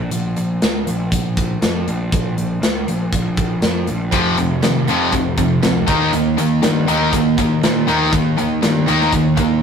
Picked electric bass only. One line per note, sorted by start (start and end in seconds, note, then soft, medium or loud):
0.12 0.34 A#1 medium
0.37 0.59 A#1 medium
0.63 0.84 C#2 medium
0.87 1.09 A#1 medium
1.12 1.57 A#1 medium
1.62 1.84 F2 medium
1.88 2.10 A#1 medium
2.12 2.35 A#1 medium
2.37 2.59 A#1 medium
2.62 2.84 C#2 medium
2.88 3.10 A#1 medium
3.13 3.57 A#1 medium
3.63 3.85 F2 medium
3.88 4.10 A#1 medium
4.12 4.35 F1 medium
4.39 4.61 F1 medium
4.64 4.86 G#1 medium
4.89 5.11 F1 medium
5.13 5.58 F1 medium
5.64 5.86 C#2 medium
5.88 6.10 D#2 medium
6.13 6.35 D#2 loud
6.38 6.61 D#2 medium
6.63 6.85 G2 medium
6.88 7.10 D#2 medium
7.13 7.58 D#2 medium
7.63 7.85 A#2 medium
7.88 8.10 D#2 medium
8.13 8.35 D#2 loud
8.38 8.60 D#2 medium
8.62 8.85 G2 medium
8.87 9.10 D#2 medium
9.13 9.57 D#2 medium